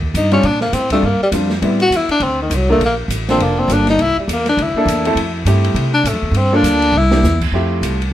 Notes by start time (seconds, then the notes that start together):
Already playing: D#2
0.02 kick
0.14 G2 D#4, hi-hat pedal, ride
0.31 G3 C4 C#4 D4 F4, ride
0.43 A#2 D4, ride
0.61 A#3, snare
0.73 A2 C4, hi-hat pedal, ride
0.90 G3 A3 C4 D4 F4, kick, ride
1.03 G2 A#3
1.20 G3, muted upright bass stroke
1.32 F2 G3 C4 D4 F4, hi-hat pedal, ride
1.50 snare
1.62 A2 G3 B3 C4 E4, ride
1.80 F#4, ride
1.90 E2, hi-hat pedal, ride
1.96 E4
2.08 D4, muted upright bass stroke, ride
2.20 D2 C4, ride
2.42 D#3
2.50 C2, hi-hat pedal, ride
2.55 F#3
2.69 A3 A#3 D4 F4 A#4
2.79 A#1, ride
2.86 A#3
3.08 A1, hi-hat pedal, ride
3.29 A#3 C4 D4 F4 A4, snare, ride
3.38 F1, ride
3.43 A#3
3.59 C4
3.68 G1 A#3 D4 F4 A4, hi-hat pedal, ride
3.74 D4
3.87 D#4, snare, ride
3.99 C2 E4, ride
4.17 G3, muted upright bass stroke
4.28 E2, hi-hat pedal, ride
4.33 A#3
4.46 D4, snare, ride
4.57 D2, ride
4.62 E4
4.74 A#3 D4 E4, muted upright bass stroke
4.78 A4
4.86 E2, hi-hat pedal, ride
5.05 A3 C4 E4 A4, ride
5.15 F2, ride
5.45 G2 A3 C4 E4 G4, hi-hat pedal, ride
5.64 ride
5.75 C3, ride
5.94 D4
6.04 A2, hi-hat pedal, ride
6.08 A3
6.13 F2
6.22 E2
6.31 G2, ride
6.37 C4
6.53 A#3 D4 F4 A4
6.63 D2, hi-hat pedal, ride
6.82 ride
6.92 C2
6.97 E4
7.10 A#3 D4 E4 G4, snare
7.23 E2, snare, hi-hat pedal
7.41 kick, crash
7.52 F2 A3 C4 E4 F4 G4
7.81 C2, hi-hat pedal, ride
8.02 ride